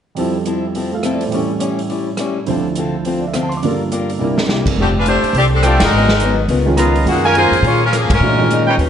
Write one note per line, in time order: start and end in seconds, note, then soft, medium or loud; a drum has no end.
0.15 1.31 F2 soft
0.15 1.31 F3 soft
0.15 0.36 F3 soft
0.15 1.30 G3 soft
0.15 0.36 C4 soft
0.15 1.33 E4 soft
0.15 0.37 E4 soft
0.15 open hi-hat soft
0.19 0.37 A4 medium
0.19 0.93 A4 soft
0.46 0.65 F3 medium
0.46 0.65 C4 medium
0.46 0.65 E4 medium
0.46 0.65 A4 medium
0.46 closed hi-hat soft
0.75 0.94 F3 soft
0.75 0.94 C4 soft
0.75 0.94 E4 soft
0.75 0.95 A4 medium
0.75 open hi-hat soft
0.91 1.32 A3 soft
0.91 1.32 F4 soft
0.91 1.33 A4 soft
0.91 1.08 F5 soft
1.03 1.22 F3 medium
1.03 1.23 C4 medium
1.03 1.23 E4 medium
1.03 1.23 A4 medium
1.03 1.19 E5 soft
1.03 cross-stick medium
1.03 closed hi-hat soft
1.14 1.28 D5 soft
1.21 1.37 C5 soft
1.21 open hi-hat soft
1.26 2.44 A2 soft
1.26 2.45 E3 soft
1.32 1.51 A2 soft
1.32 2.47 G3 soft
1.32 1.51 G3 soft
1.32 1.52 C#4 medium
1.32 2.48 C#4 soft
1.32 1.52 E4 medium
1.32 open hi-hat soft
1.37 2.49 A4 soft
1.59 1.79 A2 medium
1.59 1.79 G3 medium
1.59 1.79 C#4 medium
1.59 1.80 E4 medium
1.59 closed hi-hat soft
1.79 open hi-hat soft
1.89 2.08 A2 soft
1.89 2.08 G3 soft
1.89 2.09 C#4 soft
1.89 2.09 E4 soft
1.89 open hi-hat soft
2.17 2.37 A2 medium
2.17 2.37 G3 medium
2.17 2.38 C#4 medium
2.17 2.38 E4 medium
2.17 cross-stick medium
2.17 closed hi-hat soft
2.46 3.62 D2 soft
2.46 3.62 D3 soft
2.46 2.66 D3 soft
2.46 3.62 F3 soft
2.46 2.66 C4 soft
2.46 3.62 E4 soft
2.46 2.67 F4 medium
2.46 2.67 A4 medium
2.46 3.62 C5 soft
2.46 open hi-hat soft
2.75 2.95 D3 medium
2.75 2.95 C4 medium
2.75 2.96 F4 medium
2.75 2.96 A4 medium
2.75 closed hi-hat soft
3.05 3.23 D3 soft
3.05 3.24 C4 medium
3.05 3.24 F4 soft
3.05 3.24 A4 soft
3.05 open hi-hat soft
3.20 3.29 D5 soft
3.27 3.37 E5 soft
3.34 3.52 D3 medium
3.34 3.52 C4 medium
3.34 3.53 F4 medium
3.34 3.53 A4 medium
3.34 3.46 F5 soft
3.34 cross-stick medium
3.34 closed hi-hat soft
3.43 3.53 A5 soft
3.49 3.58 C6 soft
3.49 open hi-hat soft
3.57 3.66 D6 soft
3.62 4.20 G2 soft
3.62 4.20 D3 soft
3.62 3.81 G3 medium
3.62 4.21 A#3 soft
3.62 3.81 D4 soft
3.62 3.82 F4 medium
3.62 4.21 F4 soft
3.62 3.82 A#4 medium
3.62 open hi-hat soft
3.67 4.22 A4 soft
3.92 4.10 G3 medium
3.92 4.10 D4 medium
3.92 4.10 F4 medium
3.92 4.10 A#4 medium
3.92 closed hi-hat soft
4.10 open hi-hat soft
4.19 4.76 C2 soft
4.19 4.38 C3 soft
4.19 4.77 C3 soft
4.19 4.38 G3 soft
4.19 4.38 A#3 medium
4.19 4.77 D4 soft
4.19 4.39 E4 soft
4.19 4.78 E4 soft
4.24 4.79 A#4 soft
4.38 snare medium
4.49 4.67 C3 medium
4.49 4.67 G3 medium
4.49 4.67 A#3 medium
4.49 4.68 E4 medium
4.49 snare medium
4.66 kick medium
4.66 crash medium
4.76 5.19 F1 medium
4.76 4.96 F3 soft
4.76 4.97 A3 soft
4.76 4.97 D4 soft
4.81 4.87 D3 medium
4.81 4.88 A3 medium
4.81 4.88 C4 medium
4.81 4.97 G4 soft
4.81 4.88 G4 medium
4.98 5.07 G#3 medium
4.98 5.07 D4 medium
4.98 5.07 F4 medium
4.98 5.07 B4 medium
5.06 5.24 F3 medium
5.06 5.25 A3 medium
5.06 5.34 A3 medium
5.06 5.25 D4 medium
5.06 5.34 D4 medium
5.06 5.25 G4 medium
5.06 5.34 G4 medium
5.06 5.34 C5 medium
5.06 closed hi-hat soft
5.23 muted upright bass stroke soft
5.23 open hi-hat soft
5.33 5.76 C2 medium
5.33 5.53 F3 soft
5.33 5.53 A3 soft
5.33 5.53 D4 soft
5.33 5.54 G4 soft
5.33 open hi-hat soft
5.38 5.45 C4 medium
5.38 5.45 G4 medium
5.38 5.45 A4 medium
5.38 5.45 D5 loud
5.54 5.64 G3 medium
5.54 5.64 C4 medium
5.54 5.64 D4 medium
5.54 5.63 A4 medium
5.63 5.82 D3 medium
5.63 5.82 F3 medium
5.63 5.82 A3 medium
5.63 5.83 D4 medium
5.63 5.92 F4 medium
5.63 5.83 G4 medium
5.63 5.82 G4 medium
5.63 5.92 A4 medium
5.63 5.92 D5 medium
5.63 5.92 G5 medium
5.63 cross-stick medium
5.63 closed hi-hat medium
5.67 5.82 A3 medium
5.67 5.82 C4 medium
5.80 5.90 G1 medium
5.80 snare medium
5.80 ride medium
5.84 6.36 G#3 medium
5.84 6.36 D#4 medium
5.84 6.36 F#4 medium
5.84 6.36 A#4 medium
5.91 6.46 G#1 medium
5.91 6.11 G#2 soft
5.91 6.11 F#3 soft
5.95 6.12 B3 soft
5.95 6.12 D#4 soft
6.09 snare soft
6.20 6.40 G#2 medium
6.20 6.40 F#3 medium
6.20 6.40 B3 medium
6.20 6.40 D#4 medium
6.20 closed hi-hat soft
6.48 7.03 C#2 medium
6.48 6.67 C#3 soft
6.48 6.68 B3 soft
6.48 6.68 F4 soft
6.48 6.69 A#4 medium
6.48 open hi-hat soft
6.66 7.04 D#3 medium
6.66 7.04 G#3 medium
6.66 7.04 C#4 medium
6.66 7.04 F4 medium
6.77 6.96 C#3 medium
6.77 6.96 B3 medium
6.77 7.06 F4 medium
6.77 6.97 F4 medium
6.77 6.97 A#4 medium
6.77 7.06 B4 medium
6.77 7.06 D#5 medium
6.77 7.06 A#5 medium
6.77 cross-stick medium
6.77 closed hi-hat medium
6.96 open hi-hat soft
7.05 7.48 F#2 medium
7.05 7.24 C#3 medium
7.05 7.85 D#3 soft
7.05 7.25 F#3 soft
7.05 7.85 G#3 soft
7.05 7.24 G#3 medium
7.05 7.25 A#3 soft
7.05 7.24 A#3 medium
7.05 7.86 C#4 soft
7.05 7.86 F4 soft
7.05 7.26 F4 soft
7.05 7.23 F#4 medium
7.05 7.26 G#4 soft
7.05 open hi-hat soft
7.24 7.36 G#3 medium
7.24 7.36 C#4 medium
7.24 7.36 F4 medium
7.24 7.62 A#4 medium
7.24 7.36 A#4 medium
7.24 7.62 F5 medium
7.24 7.61 G#5 medium
7.35 7.54 F#3 medium
7.35 7.54 A#3 medium
7.35 7.63 A#3 medium
7.35 7.54 F4 medium
7.35 7.63 F4 medium
7.35 7.54 G#4 medium
7.35 7.63 G#4 medium
7.35 7.63 C5 medium
7.35 closed hi-hat soft
7.51 7.62 F2 medium
7.51 open hi-hat soft
7.62 8.06 A#2 medium
7.62 7.83 F#3 soft
7.62 7.83 A#3 soft
7.62 7.82 F4 medium
7.62 open hi-hat soft
7.66 7.82 A#3 medium
7.66 7.84 F4 soft
7.66 7.82 G#4 medium
7.66 7.84 G#4 soft
7.66 7.83 C#5 loud
7.86 7.94 G#3 medium
7.86 7.94 C#4 medium
7.86 7.94 F4 medium
7.86 7.94 A#4 medium
7.92 8.12 F3 medium
7.92 8.11 F#3 medium
7.92 8.11 A#3 medium
7.92 8.11 C#4 medium
7.92 8.12 F4 medium
7.92 8.12 G#4 medium
7.92 cross-stick medium
7.92 closed hi-hat medium
8.10 8.20 G#2 medium
8.10 8.65 G#3 medium
8.10 8.65 C#4 medium
8.10 kick medium
8.10 ride medium
8.14 8.65 F4 medium
8.14 8.65 A#4 medium
8.20 8.75 A#2 medium
8.20 8.40 A#2 soft
8.20 8.36 E3 soft
8.20 8.40 G#3 soft
8.20 8.37 A3 soft
8.20 8.40 C#4 soft
8.20 8.37 D4 soft
8.20 8.41 D#4 soft
8.20 8.37 F#4 medium
8.38 8.78 D#3 medium
8.38 8.79 G#3 soft
8.38 8.79 C#4 medium
8.38 8.79 F4 medium
8.51 8.69 A#2 medium
8.51 8.69 G#3 medium
8.51 8.69 C#4 medium
8.51 8.69 D#4 medium
8.51 closed hi-hat soft
8.67 8.75 D#4 medium
8.67 8.75 B4 medium
8.67 8.75 C#5 medium
8.67 8.75 G5 medium
8.78 8.89 D#2 medium
8.78 8.89 D#3 soft
8.78 8.89 C#4 medium
8.78 8.89 G4 medium
8.78 8.89 B4 medium
8.78 open hi-hat soft